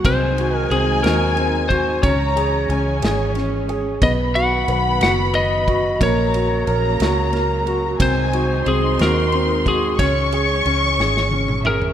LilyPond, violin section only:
\new Staff \with { instrumentName = "Violin section" } { \time 6/8 \key gis \minor \tempo 4. = 60 gis''2. | ais''4 gis''4. r8 | b''2. | ais''4 ais''2 |
gis''4 bis''2 | cis'''2~ cis'''8 e''8 | }